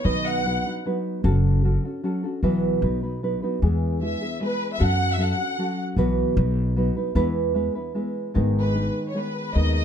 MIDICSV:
0, 0, Header, 1, 4, 480
1, 0, Start_track
1, 0, Key_signature, 4, "major"
1, 0, Tempo, 395517
1, 70, Time_signature, 3, 2, 24, 8
1, 11949, End_track
2, 0, Start_track
2, 0, Title_t, "Violin section"
2, 0, Program_c, 0, 48
2, 69, Note_on_c, 0, 75, 96
2, 318, Note_off_c, 0, 75, 0
2, 333, Note_on_c, 0, 78, 93
2, 802, Note_off_c, 0, 78, 0
2, 4887, Note_on_c, 0, 76, 73
2, 5328, Note_off_c, 0, 76, 0
2, 5380, Note_on_c, 0, 71, 83
2, 5687, Note_off_c, 0, 71, 0
2, 5746, Note_on_c, 0, 76, 80
2, 5841, Note_off_c, 0, 76, 0
2, 5865, Note_on_c, 0, 78, 99
2, 6209, Note_off_c, 0, 78, 0
2, 6231, Note_on_c, 0, 76, 90
2, 6327, Note_off_c, 0, 76, 0
2, 6335, Note_on_c, 0, 78, 84
2, 7038, Note_off_c, 0, 78, 0
2, 10429, Note_on_c, 0, 71, 67
2, 10968, Note_off_c, 0, 71, 0
2, 11021, Note_on_c, 0, 73, 68
2, 11115, Note_off_c, 0, 73, 0
2, 11132, Note_on_c, 0, 71, 76
2, 11586, Note_on_c, 0, 75, 92
2, 11600, Note_off_c, 0, 71, 0
2, 11820, Note_off_c, 0, 75, 0
2, 11835, Note_on_c, 0, 75, 90
2, 11949, Note_off_c, 0, 75, 0
2, 11949, End_track
3, 0, Start_track
3, 0, Title_t, "Nylon-string guitar"
3, 0, Program_c, 1, 24
3, 49, Note_on_c, 1, 47, 78
3, 51, Note_on_c, 1, 51, 71
3, 59, Note_on_c, 1, 54, 75
3, 61, Note_on_c, 1, 59, 74
3, 62, Note_on_c, 1, 63, 71
3, 63, Note_on_c, 1, 71, 83
3, 538, Note_off_c, 1, 54, 0
3, 538, Note_off_c, 1, 59, 0
3, 539, Note_off_c, 1, 47, 0
3, 540, Note_off_c, 1, 63, 0
3, 541, Note_off_c, 1, 51, 0
3, 543, Note_off_c, 1, 71, 0
3, 543, Note_on_c, 1, 54, 54
3, 552, Note_on_c, 1, 59, 57
3, 555, Note_on_c, 1, 63, 56
3, 558, Note_on_c, 1, 71, 54
3, 788, Note_off_c, 1, 71, 0
3, 791, Note_off_c, 1, 54, 0
3, 794, Note_off_c, 1, 63, 0
3, 796, Note_off_c, 1, 59, 0
3, 803, Note_on_c, 1, 71, 42
3, 809, Note_on_c, 1, 63, 38
3, 811, Note_on_c, 1, 59, 35
3, 821, Note_on_c, 1, 54, 30
3, 1023, Note_off_c, 1, 59, 0
3, 1024, Note_off_c, 1, 54, 0
3, 1029, Note_off_c, 1, 71, 0
3, 1032, Note_off_c, 1, 63, 0
3, 1038, Note_on_c, 1, 54, 66
3, 1038, Note_on_c, 1, 59, 66
3, 1049, Note_on_c, 1, 63, 58
3, 1050, Note_on_c, 1, 71, 68
3, 1492, Note_off_c, 1, 54, 0
3, 1496, Note_on_c, 1, 54, 80
3, 1499, Note_off_c, 1, 59, 0
3, 1503, Note_off_c, 1, 63, 0
3, 1504, Note_on_c, 1, 61, 83
3, 1508, Note_off_c, 1, 71, 0
3, 1508, Note_on_c, 1, 66, 100
3, 1513, Note_on_c, 1, 69, 99
3, 1972, Note_off_c, 1, 54, 0
3, 1983, Note_off_c, 1, 61, 0
3, 1985, Note_off_c, 1, 66, 0
3, 1987, Note_on_c, 1, 54, 52
3, 1988, Note_off_c, 1, 69, 0
3, 1997, Note_on_c, 1, 61, 63
3, 2001, Note_on_c, 1, 66, 71
3, 2009, Note_on_c, 1, 69, 66
3, 2228, Note_off_c, 1, 69, 0
3, 2232, Note_off_c, 1, 54, 0
3, 2235, Note_off_c, 1, 66, 0
3, 2238, Note_off_c, 1, 61, 0
3, 2243, Note_on_c, 1, 69, 42
3, 2249, Note_on_c, 1, 66, 39
3, 2254, Note_on_c, 1, 61, 41
3, 2461, Note_off_c, 1, 61, 0
3, 2466, Note_off_c, 1, 66, 0
3, 2469, Note_on_c, 1, 54, 66
3, 2470, Note_off_c, 1, 69, 0
3, 2476, Note_on_c, 1, 61, 68
3, 2481, Note_on_c, 1, 66, 62
3, 2486, Note_on_c, 1, 69, 63
3, 2701, Note_off_c, 1, 69, 0
3, 2714, Note_off_c, 1, 54, 0
3, 2715, Note_off_c, 1, 66, 0
3, 2716, Note_on_c, 1, 69, 43
3, 2718, Note_off_c, 1, 61, 0
3, 2730, Note_on_c, 1, 66, 46
3, 2735, Note_on_c, 1, 61, 41
3, 2944, Note_on_c, 1, 47, 81
3, 2946, Note_off_c, 1, 69, 0
3, 2951, Note_on_c, 1, 52, 88
3, 2952, Note_off_c, 1, 61, 0
3, 2952, Note_on_c, 1, 54, 92
3, 2953, Note_off_c, 1, 66, 0
3, 2957, Note_on_c, 1, 59, 72
3, 2957, Note_on_c, 1, 71, 94
3, 2959, Note_on_c, 1, 64, 86
3, 3414, Note_off_c, 1, 54, 0
3, 3423, Note_off_c, 1, 59, 0
3, 3425, Note_off_c, 1, 47, 0
3, 3428, Note_off_c, 1, 52, 0
3, 3428, Note_on_c, 1, 54, 52
3, 3432, Note_off_c, 1, 64, 0
3, 3432, Note_off_c, 1, 71, 0
3, 3438, Note_on_c, 1, 59, 61
3, 3447, Note_on_c, 1, 63, 54
3, 3448, Note_on_c, 1, 71, 58
3, 3661, Note_off_c, 1, 71, 0
3, 3667, Note_off_c, 1, 63, 0
3, 3674, Note_off_c, 1, 59, 0
3, 3675, Note_off_c, 1, 54, 0
3, 3676, Note_on_c, 1, 71, 46
3, 3682, Note_on_c, 1, 63, 34
3, 3689, Note_on_c, 1, 59, 37
3, 3694, Note_on_c, 1, 54, 37
3, 3902, Note_off_c, 1, 54, 0
3, 3904, Note_off_c, 1, 59, 0
3, 3910, Note_off_c, 1, 71, 0
3, 3913, Note_off_c, 1, 63, 0
3, 3917, Note_on_c, 1, 54, 59
3, 3919, Note_on_c, 1, 59, 52
3, 3926, Note_on_c, 1, 63, 58
3, 3931, Note_on_c, 1, 71, 71
3, 4143, Note_off_c, 1, 71, 0
3, 4147, Note_off_c, 1, 63, 0
3, 4157, Note_off_c, 1, 59, 0
3, 4157, Note_on_c, 1, 71, 46
3, 4161, Note_on_c, 1, 63, 44
3, 4163, Note_off_c, 1, 54, 0
3, 4172, Note_on_c, 1, 59, 47
3, 4177, Note_on_c, 1, 54, 41
3, 4388, Note_off_c, 1, 59, 0
3, 4390, Note_on_c, 1, 52, 77
3, 4391, Note_off_c, 1, 54, 0
3, 4393, Note_off_c, 1, 71, 0
3, 4395, Note_off_c, 1, 63, 0
3, 4396, Note_on_c, 1, 56, 76
3, 4403, Note_on_c, 1, 59, 83
3, 4407, Note_on_c, 1, 64, 77
3, 4407, Note_on_c, 1, 68, 97
3, 4857, Note_off_c, 1, 56, 0
3, 4860, Note_off_c, 1, 59, 0
3, 4872, Note_off_c, 1, 64, 0
3, 4872, Note_on_c, 1, 56, 51
3, 4874, Note_off_c, 1, 52, 0
3, 4875, Note_on_c, 1, 59, 46
3, 4882, Note_off_c, 1, 68, 0
3, 4886, Note_on_c, 1, 64, 55
3, 4894, Note_on_c, 1, 68, 49
3, 5103, Note_off_c, 1, 68, 0
3, 5111, Note_off_c, 1, 64, 0
3, 5118, Note_on_c, 1, 68, 41
3, 5121, Note_off_c, 1, 56, 0
3, 5122, Note_off_c, 1, 59, 0
3, 5126, Note_on_c, 1, 64, 35
3, 5137, Note_on_c, 1, 59, 32
3, 5340, Note_off_c, 1, 59, 0
3, 5345, Note_on_c, 1, 56, 57
3, 5349, Note_off_c, 1, 64, 0
3, 5350, Note_off_c, 1, 68, 0
3, 5355, Note_on_c, 1, 59, 48
3, 5363, Note_on_c, 1, 64, 60
3, 5364, Note_on_c, 1, 68, 57
3, 5812, Note_off_c, 1, 56, 0
3, 5817, Note_on_c, 1, 54, 73
3, 5824, Note_off_c, 1, 59, 0
3, 5824, Note_off_c, 1, 64, 0
3, 5829, Note_on_c, 1, 61, 71
3, 5829, Note_on_c, 1, 66, 71
3, 5832, Note_off_c, 1, 68, 0
3, 5837, Note_on_c, 1, 69, 78
3, 6279, Note_off_c, 1, 54, 0
3, 6286, Note_off_c, 1, 61, 0
3, 6291, Note_off_c, 1, 66, 0
3, 6294, Note_on_c, 1, 54, 47
3, 6301, Note_off_c, 1, 69, 0
3, 6301, Note_on_c, 1, 61, 51
3, 6305, Note_on_c, 1, 66, 57
3, 6315, Note_on_c, 1, 69, 59
3, 6523, Note_off_c, 1, 69, 0
3, 6537, Note_off_c, 1, 66, 0
3, 6537, Note_on_c, 1, 69, 38
3, 6544, Note_off_c, 1, 54, 0
3, 6545, Note_off_c, 1, 61, 0
3, 6552, Note_on_c, 1, 66, 37
3, 6559, Note_on_c, 1, 61, 33
3, 6771, Note_off_c, 1, 61, 0
3, 6774, Note_off_c, 1, 69, 0
3, 6776, Note_off_c, 1, 66, 0
3, 6778, Note_on_c, 1, 54, 58
3, 6785, Note_on_c, 1, 61, 59
3, 6790, Note_on_c, 1, 66, 62
3, 6793, Note_on_c, 1, 69, 63
3, 7237, Note_off_c, 1, 54, 0
3, 7244, Note_on_c, 1, 47, 87
3, 7248, Note_off_c, 1, 66, 0
3, 7249, Note_off_c, 1, 61, 0
3, 7250, Note_on_c, 1, 52, 90
3, 7252, Note_on_c, 1, 54, 82
3, 7254, Note_on_c, 1, 59, 97
3, 7259, Note_off_c, 1, 69, 0
3, 7263, Note_on_c, 1, 66, 97
3, 7264, Note_on_c, 1, 71, 94
3, 7712, Note_off_c, 1, 54, 0
3, 7724, Note_off_c, 1, 47, 0
3, 7727, Note_off_c, 1, 52, 0
3, 7727, Note_on_c, 1, 54, 62
3, 7731, Note_off_c, 1, 59, 0
3, 7733, Note_off_c, 1, 66, 0
3, 7736, Note_on_c, 1, 59, 49
3, 7738, Note_on_c, 1, 63, 55
3, 7740, Note_off_c, 1, 71, 0
3, 7745, Note_on_c, 1, 71, 59
3, 8192, Note_off_c, 1, 54, 0
3, 8205, Note_off_c, 1, 59, 0
3, 8206, Note_on_c, 1, 54, 67
3, 8210, Note_off_c, 1, 63, 0
3, 8210, Note_on_c, 1, 59, 72
3, 8219, Note_off_c, 1, 71, 0
3, 8224, Note_on_c, 1, 71, 65
3, 8226, Note_on_c, 1, 63, 66
3, 8441, Note_off_c, 1, 71, 0
3, 8448, Note_off_c, 1, 63, 0
3, 8451, Note_off_c, 1, 59, 0
3, 8453, Note_off_c, 1, 54, 0
3, 8456, Note_on_c, 1, 71, 53
3, 8463, Note_on_c, 1, 63, 45
3, 8466, Note_on_c, 1, 59, 43
3, 8472, Note_on_c, 1, 54, 41
3, 8669, Note_off_c, 1, 59, 0
3, 8675, Note_off_c, 1, 54, 0
3, 8675, Note_on_c, 1, 52, 75
3, 8678, Note_off_c, 1, 71, 0
3, 8680, Note_on_c, 1, 56, 75
3, 8683, Note_on_c, 1, 59, 95
3, 8684, Note_off_c, 1, 63, 0
3, 8689, Note_on_c, 1, 64, 83
3, 8693, Note_on_c, 1, 71, 106
3, 9146, Note_off_c, 1, 56, 0
3, 9150, Note_off_c, 1, 64, 0
3, 9151, Note_on_c, 1, 56, 61
3, 9155, Note_off_c, 1, 59, 0
3, 9160, Note_on_c, 1, 59, 64
3, 9162, Note_off_c, 1, 52, 0
3, 9165, Note_on_c, 1, 64, 62
3, 9167, Note_off_c, 1, 71, 0
3, 9172, Note_on_c, 1, 71, 68
3, 9393, Note_off_c, 1, 71, 0
3, 9400, Note_off_c, 1, 64, 0
3, 9407, Note_on_c, 1, 71, 49
3, 9410, Note_off_c, 1, 56, 0
3, 9411, Note_off_c, 1, 59, 0
3, 9415, Note_on_c, 1, 64, 40
3, 9425, Note_on_c, 1, 59, 44
3, 9635, Note_off_c, 1, 59, 0
3, 9638, Note_off_c, 1, 64, 0
3, 9642, Note_on_c, 1, 56, 58
3, 9643, Note_off_c, 1, 71, 0
3, 9649, Note_on_c, 1, 59, 58
3, 9652, Note_on_c, 1, 64, 65
3, 9658, Note_on_c, 1, 71, 67
3, 10123, Note_on_c, 1, 44, 78
3, 10124, Note_off_c, 1, 56, 0
3, 10125, Note_on_c, 1, 51, 69
3, 10127, Note_off_c, 1, 59, 0
3, 10129, Note_on_c, 1, 56, 82
3, 10130, Note_off_c, 1, 64, 0
3, 10132, Note_on_c, 1, 59, 87
3, 10135, Note_on_c, 1, 63, 81
3, 10138, Note_off_c, 1, 71, 0
3, 10143, Note_on_c, 1, 70, 90
3, 10591, Note_off_c, 1, 56, 0
3, 10605, Note_on_c, 1, 56, 48
3, 10606, Note_off_c, 1, 59, 0
3, 10615, Note_off_c, 1, 44, 0
3, 10620, Note_on_c, 1, 59, 45
3, 10621, Note_off_c, 1, 63, 0
3, 10621, Note_off_c, 1, 70, 0
3, 10626, Note_on_c, 1, 63, 57
3, 10626, Note_on_c, 1, 70, 40
3, 11076, Note_off_c, 1, 56, 0
3, 11088, Note_off_c, 1, 59, 0
3, 11090, Note_on_c, 1, 56, 53
3, 11103, Note_on_c, 1, 59, 52
3, 11105, Note_off_c, 1, 63, 0
3, 11109, Note_on_c, 1, 63, 52
3, 11127, Note_off_c, 1, 70, 0
3, 11578, Note_off_c, 1, 59, 0
3, 11579, Note_off_c, 1, 56, 0
3, 11582, Note_off_c, 1, 51, 0
3, 11587, Note_on_c, 1, 51, 65
3, 11589, Note_on_c, 1, 44, 68
3, 11592, Note_on_c, 1, 59, 73
3, 11594, Note_on_c, 1, 56, 64
3, 11598, Note_off_c, 1, 63, 0
3, 11598, Note_on_c, 1, 70, 79
3, 11603, Note_on_c, 1, 63, 76
3, 11949, Note_off_c, 1, 44, 0
3, 11949, Note_off_c, 1, 51, 0
3, 11949, Note_off_c, 1, 56, 0
3, 11949, Note_off_c, 1, 59, 0
3, 11949, Note_off_c, 1, 63, 0
3, 11949, Note_off_c, 1, 70, 0
3, 11949, End_track
4, 0, Start_track
4, 0, Title_t, "Upright bass"
4, 0, Program_c, 2, 32
4, 61, Note_on_c, 2, 35, 88
4, 685, Note_off_c, 2, 35, 0
4, 1505, Note_on_c, 2, 30, 96
4, 2129, Note_off_c, 2, 30, 0
4, 2945, Note_on_c, 2, 35, 79
4, 3257, Note_off_c, 2, 35, 0
4, 3423, Note_on_c, 2, 35, 85
4, 4053, Note_off_c, 2, 35, 0
4, 4397, Note_on_c, 2, 40, 83
4, 5021, Note_off_c, 2, 40, 0
4, 5835, Note_on_c, 2, 42, 86
4, 6450, Note_off_c, 2, 42, 0
4, 7239, Note_on_c, 2, 35, 79
4, 7553, Note_off_c, 2, 35, 0
4, 7728, Note_on_c, 2, 35, 105
4, 8350, Note_off_c, 2, 35, 0
4, 8680, Note_on_c, 2, 40, 80
4, 9312, Note_off_c, 2, 40, 0
4, 10145, Note_on_c, 2, 32, 76
4, 10771, Note_off_c, 2, 32, 0
4, 11596, Note_on_c, 2, 39, 80
4, 11949, Note_off_c, 2, 39, 0
4, 11949, End_track
0, 0, End_of_file